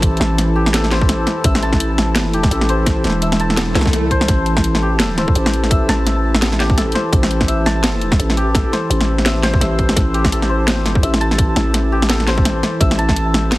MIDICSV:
0, 0, Header, 1, 6, 480
1, 0, Start_track
1, 0, Key_signature, 0, "minor"
1, 0, Tempo, 355030
1, 35, Time_signature, 4, 2, 24, 8
1, 18363, End_track
2, 0, Start_track
2, 0, Title_t, "Santur"
2, 0, Program_c, 0, 15
2, 0, Note_on_c, 0, 67, 78
2, 0, Note_on_c, 0, 69, 76
2, 0, Note_on_c, 0, 72, 77
2, 0, Note_on_c, 0, 76, 78
2, 0, Note_on_c, 0, 81, 102
2, 747, Note_off_c, 0, 67, 0
2, 753, Note_on_c, 0, 67, 78
2, 996, Note_off_c, 0, 69, 0
2, 1002, Note_on_c, 0, 69, 82
2, 1233, Note_off_c, 0, 72, 0
2, 1239, Note_on_c, 0, 72, 79
2, 1952, Note_off_c, 0, 76, 0
2, 1958, Note_on_c, 0, 76, 83
2, 2195, Note_off_c, 0, 81, 0
2, 2200, Note_on_c, 0, 81, 104
2, 3157, Note_off_c, 0, 67, 0
2, 3162, Note_on_c, 0, 67, 79
2, 3392, Note_off_c, 0, 69, 0
2, 3398, Note_on_c, 0, 69, 75
2, 3635, Note_off_c, 0, 72, 0
2, 3641, Note_on_c, 0, 72, 77
2, 4352, Note_off_c, 0, 76, 0
2, 4357, Note_on_c, 0, 76, 78
2, 4595, Note_off_c, 0, 81, 0
2, 4600, Note_on_c, 0, 81, 101
2, 5551, Note_off_c, 0, 72, 0
2, 5557, Note_on_c, 0, 72, 101
2, 6514, Note_off_c, 0, 67, 0
2, 6519, Note_on_c, 0, 67, 78
2, 6759, Note_off_c, 0, 69, 0
2, 6764, Note_on_c, 0, 69, 83
2, 6996, Note_off_c, 0, 72, 0
2, 7002, Note_on_c, 0, 72, 80
2, 7212, Note_off_c, 0, 81, 0
2, 7463, Note_off_c, 0, 76, 0
2, 7725, Note_on_c, 0, 76, 84
2, 7962, Note_on_c, 0, 81, 105
2, 8913, Note_off_c, 0, 67, 0
2, 8918, Note_on_c, 0, 67, 82
2, 9150, Note_off_c, 0, 69, 0
2, 9155, Note_on_c, 0, 69, 78
2, 9386, Note_off_c, 0, 72, 0
2, 9392, Note_on_c, 0, 72, 77
2, 10105, Note_off_c, 0, 76, 0
2, 10111, Note_on_c, 0, 76, 78
2, 10347, Note_off_c, 0, 81, 0
2, 10353, Note_on_c, 0, 81, 104
2, 11310, Note_off_c, 0, 67, 0
2, 11315, Note_on_c, 0, 67, 77
2, 11546, Note_off_c, 0, 69, 0
2, 11552, Note_on_c, 0, 69, 84
2, 11789, Note_off_c, 0, 72, 0
2, 11795, Note_on_c, 0, 72, 76
2, 12510, Note_off_c, 0, 76, 0
2, 12516, Note_on_c, 0, 76, 83
2, 12745, Note_off_c, 0, 72, 0
2, 12751, Note_on_c, 0, 72, 105
2, 12965, Note_off_c, 0, 81, 0
2, 12985, Note_off_c, 0, 76, 0
2, 12990, Note_on_c, 0, 76, 75
2, 13705, Note_off_c, 0, 67, 0
2, 13710, Note_on_c, 0, 67, 78
2, 13947, Note_off_c, 0, 69, 0
2, 13952, Note_on_c, 0, 69, 76
2, 14181, Note_off_c, 0, 72, 0
2, 14186, Note_on_c, 0, 72, 78
2, 14908, Note_off_c, 0, 76, 0
2, 14913, Note_on_c, 0, 76, 74
2, 15150, Note_on_c, 0, 81, 105
2, 16113, Note_off_c, 0, 67, 0
2, 16118, Note_on_c, 0, 67, 78
2, 16347, Note_off_c, 0, 69, 0
2, 16353, Note_on_c, 0, 69, 83
2, 16590, Note_off_c, 0, 72, 0
2, 16596, Note_on_c, 0, 72, 80
2, 17311, Note_off_c, 0, 76, 0
2, 17316, Note_on_c, 0, 76, 83
2, 17548, Note_off_c, 0, 81, 0
2, 17553, Note_on_c, 0, 81, 107
2, 18363, Note_off_c, 0, 67, 0
2, 18363, Note_off_c, 0, 69, 0
2, 18363, Note_off_c, 0, 72, 0
2, 18363, Note_off_c, 0, 76, 0
2, 18363, Note_off_c, 0, 81, 0
2, 18363, End_track
3, 0, Start_track
3, 0, Title_t, "Analog synth pad"
3, 0, Program_c, 1, 89
3, 0, Note_on_c, 1, 52, 87
3, 0, Note_on_c, 1, 64, 94
3, 0, Note_on_c, 1, 69, 78
3, 0, Note_on_c, 1, 81, 87
3, 18363, Note_off_c, 1, 52, 0
3, 18363, Note_off_c, 1, 64, 0
3, 18363, Note_off_c, 1, 69, 0
3, 18363, Note_off_c, 1, 81, 0
3, 18363, End_track
4, 0, Start_track
4, 0, Title_t, "808-style bass"
4, 0, Program_c, 2, 38
4, 0, Note_on_c, 2, 33, 97
4, 255, Note_off_c, 2, 33, 0
4, 271, Note_on_c, 2, 33, 100
4, 1697, Note_off_c, 2, 33, 0
4, 1950, Note_on_c, 2, 33, 100
4, 3377, Note_off_c, 2, 33, 0
4, 3393, Note_on_c, 2, 33, 98
4, 4098, Note_off_c, 2, 33, 0
4, 4113, Note_on_c, 2, 28, 100
4, 5058, Note_off_c, 2, 28, 0
4, 5075, Note_on_c, 2, 36, 103
4, 5779, Note_off_c, 2, 36, 0
4, 5795, Note_on_c, 2, 33, 99
4, 7219, Note_off_c, 2, 33, 0
4, 7242, Note_on_c, 2, 33, 101
4, 7943, Note_off_c, 2, 33, 0
4, 7958, Note_on_c, 2, 33, 97
4, 9380, Note_off_c, 2, 33, 0
4, 9634, Note_on_c, 2, 33, 100
4, 11059, Note_off_c, 2, 33, 0
4, 11078, Note_on_c, 2, 33, 98
4, 11781, Note_off_c, 2, 33, 0
4, 12033, Note_on_c, 2, 33, 99
4, 12978, Note_off_c, 2, 33, 0
4, 12990, Note_on_c, 2, 33, 100
4, 13457, Note_off_c, 2, 33, 0
4, 13473, Note_on_c, 2, 33, 102
4, 14473, Note_off_c, 2, 33, 0
4, 14473, Note_on_c, 2, 32, 102
4, 14898, Note_off_c, 2, 32, 0
4, 14913, Note_on_c, 2, 33, 99
4, 15618, Note_off_c, 2, 33, 0
4, 15634, Note_on_c, 2, 33, 99
4, 17058, Note_off_c, 2, 33, 0
4, 17314, Note_on_c, 2, 33, 99
4, 18363, Note_off_c, 2, 33, 0
4, 18363, End_track
5, 0, Start_track
5, 0, Title_t, "Swell"
5, 0, Program_c, 3, 103
5, 4831, Note_on_c, 3, 60, 63
5, 5793, Note_off_c, 3, 60, 0
5, 18363, End_track
6, 0, Start_track
6, 0, Title_t, "Drums"
6, 31, Note_on_c, 9, 36, 113
6, 39, Note_on_c, 9, 42, 78
6, 166, Note_off_c, 9, 36, 0
6, 174, Note_off_c, 9, 42, 0
6, 229, Note_on_c, 9, 42, 36
6, 281, Note_on_c, 9, 40, 84
6, 365, Note_off_c, 9, 42, 0
6, 417, Note_off_c, 9, 40, 0
6, 519, Note_on_c, 9, 40, 53
6, 519, Note_on_c, 9, 42, 64
6, 655, Note_off_c, 9, 40, 0
6, 655, Note_off_c, 9, 42, 0
6, 897, Note_on_c, 9, 40, 78
6, 1000, Note_on_c, 9, 38, 112
6, 1000, Note_on_c, 9, 42, 77
6, 1032, Note_off_c, 9, 40, 0
6, 1135, Note_off_c, 9, 38, 0
6, 1135, Note_off_c, 9, 42, 0
6, 1136, Note_on_c, 9, 40, 53
6, 1235, Note_on_c, 9, 38, 60
6, 1235, Note_on_c, 9, 42, 36
6, 1271, Note_off_c, 9, 40, 0
6, 1371, Note_off_c, 9, 38, 0
6, 1371, Note_off_c, 9, 42, 0
6, 1371, Note_on_c, 9, 36, 106
6, 1473, Note_on_c, 9, 40, 76
6, 1473, Note_on_c, 9, 42, 61
6, 1507, Note_off_c, 9, 36, 0
6, 1608, Note_off_c, 9, 40, 0
6, 1608, Note_off_c, 9, 42, 0
6, 1714, Note_on_c, 9, 40, 53
6, 1714, Note_on_c, 9, 42, 37
6, 1849, Note_off_c, 9, 40, 0
6, 1849, Note_off_c, 9, 42, 0
6, 1951, Note_on_c, 9, 42, 80
6, 1952, Note_on_c, 9, 36, 111
6, 2086, Note_off_c, 9, 42, 0
6, 2088, Note_off_c, 9, 36, 0
6, 2096, Note_on_c, 9, 40, 85
6, 2198, Note_on_c, 9, 42, 37
6, 2231, Note_off_c, 9, 40, 0
6, 2331, Note_on_c, 9, 36, 59
6, 2333, Note_off_c, 9, 42, 0
6, 2335, Note_on_c, 9, 40, 57
6, 2437, Note_on_c, 9, 42, 66
6, 2467, Note_off_c, 9, 36, 0
6, 2470, Note_off_c, 9, 40, 0
6, 2572, Note_off_c, 9, 42, 0
6, 2679, Note_on_c, 9, 40, 85
6, 2814, Note_off_c, 9, 40, 0
6, 2914, Note_on_c, 9, 38, 115
6, 2914, Note_on_c, 9, 40, 55
6, 2914, Note_on_c, 9, 42, 79
6, 3049, Note_off_c, 9, 38, 0
6, 3049, Note_off_c, 9, 40, 0
6, 3049, Note_off_c, 9, 42, 0
6, 3157, Note_on_c, 9, 42, 38
6, 3291, Note_on_c, 9, 36, 103
6, 3292, Note_off_c, 9, 42, 0
6, 3295, Note_on_c, 9, 40, 83
6, 3398, Note_on_c, 9, 42, 63
6, 3426, Note_off_c, 9, 36, 0
6, 3430, Note_off_c, 9, 40, 0
6, 3533, Note_off_c, 9, 42, 0
6, 3534, Note_on_c, 9, 40, 57
6, 3637, Note_on_c, 9, 42, 37
6, 3669, Note_off_c, 9, 40, 0
6, 3772, Note_off_c, 9, 42, 0
6, 3871, Note_on_c, 9, 36, 115
6, 3874, Note_on_c, 9, 40, 84
6, 3874, Note_on_c, 9, 42, 81
6, 4007, Note_off_c, 9, 36, 0
6, 4009, Note_off_c, 9, 40, 0
6, 4009, Note_off_c, 9, 42, 0
6, 4114, Note_on_c, 9, 40, 54
6, 4114, Note_on_c, 9, 42, 39
6, 4150, Note_off_c, 9, 40, 0
6, 4150, Note_on_c, 9, 40, 44
6, 4187, Note_off_c, 9, 40, 0
6, 4187, Note_on_c, 9, 40, 37
6, 4222, Note_off_c, 9, 40, 0
6, 4222, Note_on_c, 9, 40, 30
6, 4249, Note_off_c, 9, 42, 0
6, 4353, Note_on_c, 9, 42, 68
6, 4357, Note_off_c, 9, 40, 0
6, 4488, Note_off_c, 9, 42, 0
6, 4491, Note_on_c, 9, 40, 87
6, 4592, Note_on_c, 9, 42, 38
6, 4626, Note_off_c, 9, 40, 0
6, 4727, Note_off_c, 9, 42, 0
6, 4733, Note_on_c, 9, 40, 57
6, 4831, Note_on_c, 9, 38, 114
6, 4831, Note_on_c, 9, 42, 81
6, 4868, Note_off_c, 9, 40, 0
6, 4966, Note_off_c, 9, 38, 0
6, 4966, Note_off_c, 9, 42, 0
6, 5076, Note_on_c, 9, 38, 63
6, 5076, Note_on_c, 9, 40, 83
6, 5076, Note_on_c, 9, 42, 38
6, 5154, Note_off_c, 9, 40, 0
6, 5154, Note_on_c, 9, 40, 68
6, 5211, Note_off_c, 9, 38, 0
6, 5211, Note_off_c, 9, 42, 0
6, 5213, Note_on_c, 9, 36, 106
6, 5235, Note_off_c, 9, 40, 0
6, 5235, Note_on_c, 9, 40, 53
6, 5315, Note_off_c, 9, 40, 0
6, 5315, Note_on_c, 9, 40, 55
6, 5315, Note_on_c, 9, 42, 66
6, 5349, Note_off_c, 9, 36, 0
6, 5451, Note_off_c, 9, 40, 0
6, 5451, Note_off_c, 9, 42, 0
6, 5554, Note_on_c, 9, 36, 61
6, 5556, Note_on_c, 9, 42, 38
6, 5689, Note_off_c, 9, 36, 0
6, 5692, Note_off_c, 9, 42, 0
6, 5693, Note_on_c, 9, 40, 84
6, 5792, Note_off_c, 9, 40, 0
6, 5792, Note_on_c, 9, 40, 56
6, 5792, Note_on_c, 9, 42, 82
6, 5794, Note_on_c, 9, 36, 121
6, 5927, Note_off_c, 9, 40, 0
6, 5927, Note_off_c, 9, 42, 0
6, 5929, Note_off_c, 9, 36, 0
6, 6031, Note_on_c, 9, 42, 39
6, 6166, Note_off_c, 9, 42, 0
6, 6174, Note_on_c, 9, 36, 65
6, 6174, Note_on_c, 9, 40, 82
6, 6274, Note_on_c, 9, 42, 68
6, 6309, Note_off_c, 9, 36, 0
6, 6309, Note_off_c, 9, 40, 0
6, 6409, Note_off_c, 9, 42, 0
6, 6418, Note_on_c, 9, 40, 57
6, 6554, Note_off_c, 9, 40, 0
6, 6755, Note_on_c, 9, 38, 123
6, 6755, Note_on_c, 9, 40, 81
6, 6755, Note_on_c, 9, 42, 85
6, 6890, Note_off_c, 9, 38, 0
6, 6890, Note_off_c, 9, 40, 0
6, 6890, Note_off_c, 9, 42, 0
6, 6999, Note_on_c, 9, 40, 57
6, 6999, Note_on_c, 9, 42, 41
6, 7134, Note_off_c, 9, 40, 0
6, 7134, Note_off_c, 9, 42, 0
6, 7136, Note_on_c, 9, 36, 107
6, 7239, Note_on_c, 9, 42, 70
6, 7272, Note_off_c, 9, 36, 0
6, 7374, Note_off_c, 9, 42, 0
6, 7382, Note_on_c, 9, 40, 85
6, 7483, Note_on_c, 9, 42, 40
6, 7518, Note_off_c, 9, 40, 0
6, 7619, Note_off_c, 9, 42, 0
6, 7620, Note_on_c, 9, 40, 56
6, 7717, Note_on_c, 9, 36, 127
6, 7720, Note_on_c, 9, 42, 85
6, 7755, Note_off_c, 9, 40, 0
6, 7852, Note_off_c, 9, 36, 0
6, 7855, Note_off_c, 9, 42, 0
6, 7962, Note_on_c, 9, 40, 83
6, 7962, Note_on_c, 9, 42, 40
6, 8097, Note_off_c, 9, 40, 0
6, 8097, Note_off_c, 9, 42, 0
6, 8201, Note_on_c, 9, 40, 54
6, 8201, Note_on_c, 9, 42, 71
6, 8336, Note_off_c, 9, 40, 0
6, 8336, Note_off_c, 9, 42, 0
6, 8579, Note_on_c, 9, 40, 83
6, 8681, Note_on_c, 9, 38, 124
6, 8681, Note_on_c, 9, 42, 81
6, 8714, Note_off_c, 9, 40, 0
6, 8816, Note_off_c, 9, 38, 0
6, 8816, Note_off_c, 9, 42, 0
6, 8819, Note_on_c, 9, 40, 56
6, 8924, Note_on_c, 9, 38, 67
6, 8924, Note_on_c, 9, 42, 40
6, 8954, Note_off_c, 9, 40, 0
6, 9054, Note_on_c, 9, 36, 113
6, 9059, Note_off_c, 9, 38, 0
6, 9059, Note_off_c, 9, 42, 0
6, 9162, Note_on_c, 9, 40, 78
6, 9162, Note_on_c, 9, 42, 68
6, 9189, Note_off_c, 9, 36, 0
6, 9297, Note_off_c, 9, 40, 0
6, 9297, Note_off_c, 9, 42, 0
6, 9356, Note_on_c, 9, 42, 40
6, 9402, Note_on_c, 9, 40, 55
6, 9491, Note_off_c, 9, 42, 0
6, 9538, Note_off_c, 9, 40, 0
6, 9634, Note_on_c, 9, 36, 124
6, 9639, Note_on_c, 9, 42, 85
6, 9769, Note_off_c, 9, 36, 0
6, 9774, Note_off_c, 9, 42, 0
6, 9777, Note_on_c, 9, 40, 80
6, 9879, Note_on_c, 9, 42, 40
6, 9912, Note_off_c, 9, 40, 0
6, 10013, Note_on_c, 9, 36, 66
6, 10014, Note_off_c, 9, 42, 0
6, 10015, Note_on_c, 9, 40, 53
6, 10117, Note_on_c, 9, 42, 70
6, 10148, Note_off_c, 9, 36, 0
6, 10151, Note_off_c, 9, 40, 0
6, 10253, Note_off_c, 9, 42, 0
6, 10359, Note_on_c, 9, 40, 81
6, 10494, Note_off_c, 9, 40, 0
6, 10595, Note_on_c, 9, 38, 127
6, 10595, Note_on_c, 9, 40, 52
6, 10595, Note_on_c, 9, 42, 84
6, 10730, Note_off_c, 9, 38, 0
6, 10730, Note_off_c, 9, 40, 0
6, 10730, Note_off_c, 9, 42, 0
6, 10836, Note_on_c, 9, 42, 39
6, 10971, Note_off_c, 9, 42, 0
6, 10974, Note_on_c, 9, 36, 117
6, 10977, Note_on_c, 9, 40, 77
6, 11082, Note_on_c, 9, 42, 68
6, 11109, Note_off_c, 9, 36, 0
6, 11112, Note_off_c, 9, 40, 0
6, 11217, Note_off_c, 9, 42, 0
6, 11218, Note_on_c, 9, 40, 55
6, 11320, Note_on_c, 9, 42, 39
6, 11353, Note_off_c, 9, 40, 0
6, 11455, Note_off_c, 9, 42, 0
6, 11554, Note_on_c, 9, 36, 126
6, 11562, Note_on_c, 9, 40, 77
6, 11562, Note_on_c, 9, 42, 79
6, 11690, Note_off_c, 9, 36, 0
6, 11697, Note_off_c, 9, 40, 0
6, 11697, Note_off_c, 9, 42, 0
6, 11805, Note_on_c, 9, 40, 52
6, 11805, Note_on_c, 9, 42, 38
6, 11940, Note_off_c, 9, 40, 0
6, 11940, Note_off_c, 9, 42, 0
6, 12041, Note_on_c, 9, 42, 68
6, 12176, Note_on_c, 9, 40, 80
6, 12177, Note_off_c, 9, 42, 0
6, 12311, Note_off_c, 9, 40, 0
6, 12417, Note_on_c, 9, 40, 52
6, 12516, Note_on_c, 9, 38, 121
6, 12516, Note_on_c, 9, 42, 77
6, 12552, Note_off_c, 9, 40, 0
6, 12651, Note_off_c, 9, 38, 0
6, 12651, Note_off_c, 9, 42, 0
6, 12754, Note_on_c, 9, 38, 67
6, 12754, Note_on_c, 9, 40, 78
6, 12754, Note_on_c, 9, 42, 38
6, 12890, Note_off_c, 9, 38, 0
6, 12890, Note_off_c, 9, 40, 0
6, 12890, Note_off_c, 9, 42, 0
6, 12892, Note_on_c, 9, 36, 112
6, 12997, Note_on_c, 9, 40, 50
6, 12997, Note_on_c, 9, 42, 63
6, 13028, Note_off_c, 9, 36, 0
6, 13133, Note_off_c, 9, 40, 0
6, 13133, Note_off_c, 9, 42, 0
6, 13231, Note_on_c, 9, 36, 68
6, 13233, Note_on_c, 9, 42, 37
6, 13367, Note_off_c, 9, 36, 0
6, 13368, Note_off_c, 9, 42, 0
6, 13370, Note_on_c, 9, 40, 78
6, 13472, Note_on_c, 9, 36, 120
6, 13476, Note_off_c, 9, 40, 0
6, 13476, Note_on_c, 9, 40, 52
6, 13476, Note_on_c, 9, 42, 75
6, 13607, Note_off_c, 9, 36, 0
6, 13611, Note_off_c, 9, 40, 0
6, 13611, Note_off_c, 9, 42, 0
6, 13714, Note_on_c, 9, 42, 37
6, 13849, Note_off_c, 9, 42, 0
6, 13850, Note_on_c, 9, 36, 63
6, 13853, Note_on_c, 9, 40, 77
6, 13958, Note_on_c, 9, 42, 65
6, 13985, Note_off_c, 9, 36, 0
6, 13988, Note_off_c, 9, 40, 0
6, 14093, Note_off_c, 9, 42, 0
6, 14093, Note_on_c, 9, 40, 54
6, 14228, Note_off_c, 9, 40, 0
6, 14436, Note_on_c, 9, 38, 118
6, 14436, Note_on_c, 9, 40, 76
6, 14436, Note_on_c, 9, 42, 79
6, 14571, Note_off_c, 9, 38, 0
6, 14571, Note_off_c, 9, 40, 0
6, 14571, Note_off_c, 9, 42, 0
6, 14678, Note_on_c, 9, 40, 53
6, 14678, Note_on_c, 9, 42, 37
6, 14810, Note_on_c, 9, 36, 113
6, 14813, Note_off_c, 9, 40, 0
6, 14813, Note_off_c, 9, 42, 0
6, 14916, Note_on_c, 9, 42, 61
6, 14945, Note_off_c, 9, 36, 0
6, 15051, Note_off_c, 9, 42, 0
6, 15058, Note_on_c, 9, 40, 81
6, 15157, Note_on_c, 9, 42, 37
6, 15193, Note_off_c, 9, 40, 0
6, 15292, Note_off_c, 9, 42, 0
6, 15294, Note_on_c, 9, 40, 54
6, 15392, Note_on_c, 9, 36, 118
6, 15394, Note_on_c, 9, 42, 79
6, 15429, Note_off_c, 9, 40, 0
6, 15527, Note_off_c, 9, 36, 0
6, 15529, Note_off_c, 9, 42, 0
6, 15632, Note_on_c, 9, 40, 80
6, 15632, Note_on_c, 9, 42, 37
6, 15767, Note_off_c, 9, 40, 0
6, 15767, Note_off_c, 9, 42, 0
6, 15874, Note_on_c, 9, 40, 53
6, 15874, Note_on_c, 9, 42, 65
6, 16009, Note_off_c, 9, 40, 0
6, 16009, Note_off_c, 9, 42, 0
6, 16256, Note_on_c, 9, 40, 80
6, 16353, Note_on_c, 9, 38, 115
6, 16353, Note_on_c, 9, 42, 78
6, 16391, Note_off_c, 9, 40, 0
6, 16488, Note_off_c, 9, 38, 0
6, 16488, Note_off_c, 9, 42, 0
6, 16494, Note_on_c, 9, 40, 54
6, 16595, Note_on_c, 9, 38, 62
6, 16595, Note_on_c, 9, 42, 37
6, 16629, Note_off_c, 9, 40, 0
6, 16730, Note_off_c, 9, 38, 0
6, 16730, Note_off_c, 9, 42, 0
6, 16732, Note_on_c, 9, 36, 106
6, 16837, Note_on_c, 9, 40, 79
6, 16837, Note_on_c, 9, 42, 62
6, 16867, Note_off_c, 9, 36, 0
6, 16972, Note_off_c, 9, 40, 0
6, 16972, Note_off_c, 9, 42, 0
6, 17078, Note_on_c, 9, 40, 54
6, 17078, Note_on_c, 9, 42, 36
6, 17214, Note_off_c, 9, 40, 0
6, 17214, Note_off_c, 9, 42, 0
6, 17313, Note_on_c, 9, 36, 116
6, 17317, Note_on_c, 9, 42, 80
6, 17448, Note_off_c, 9, 36, 0
6, 17453, Note_off_c, 9, 42, 0
6, 17456, Note_on_c, 9, 40, 82
6, 17559, Note_on_c, 9, 42, 38
6, 17592, Note_off_c, 9, 40, 0
6, 17692, Note_on_c, 9, 36, 61
6, 17695, Note_off_c, 9, 42, 0
6, 17696, Note_on_c, 9, 40, 57
6, 17798, Note_on_c, 9, 42, 66
6, 17827, Note_off_c, 9, 36, 0
6, 17832, Note_off_c, 9, 40, 0
6, 17933, Note_off_c, 9, 42, 0
6, 18039, Note_on_c, 9, 40, 85
6, 18175, Note_off_c, 9, 40, 0
6, 18276, Note_on_c, 9, 38, 116
6, 18276, Note_on_c, 9, 40, 54
6, 18276, Note_on_c, 9, 42, 80
6, 18363, Note_off_c, 9, 38, 0
6, 18363, Note_off_c, 9, 40, 0
6, 18363, Note_off_c, 9, 42, 0
6, 18363, End_track
0, 0, End_of_file